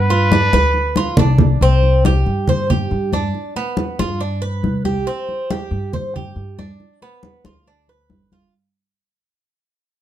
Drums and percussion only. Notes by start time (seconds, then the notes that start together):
0.10 high conga
0.32 high conga
0.53 high conga
0.74 high conga
0.96 high conga
1.17 low conga
1.38 low conga
1.61 high conga
1.83 high conga
2.05 high conga
2.26 high conga
2.47 high conga, low conga
2.70 high conga, low conga
2.91 high conga
3.13 high conga
3.35 high conga
3.56 high conga
3.77 high conga
3.99 high conga
4.21 high conga
4.43 high conga
4.64 high conga
4.85 high conga
5.07 high conga
5.29 high conga
5.50 high conga
5.72 high conga
5.93 high conga, low conga
6.16 high conga, low conga
6.37 high conga
6.59 high conga
6.80 high conga
7.02 high conga
7.23 high conga
7.45 high conga
7.66 high conga
7.88 high conga
8.10 high conga
8.32 high conga